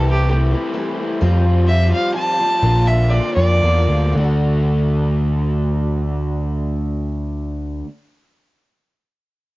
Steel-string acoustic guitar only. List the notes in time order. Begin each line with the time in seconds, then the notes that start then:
Already playing: C3 E3 A3 E4 G4
0.29 E3 A3 E4 G4
0.51 A3 E4 G4
0.73 E3 A3 E4 G4
1.21 F3 G3 C4 F4
1.67 F3 G3 C4 F4
1.92 G3 C4 F4
2.14 F3 G3 C4 F4
2.39 G3 C4 F4
2.62 A#2 D3 A#3 C4 F4
3.11 D3 A#3 C4 F4
3.37 A#3 C4 F4
3.62 D3 A#3 C4 F4
4.13 D3
4.17 A3 D4
4.24 F#4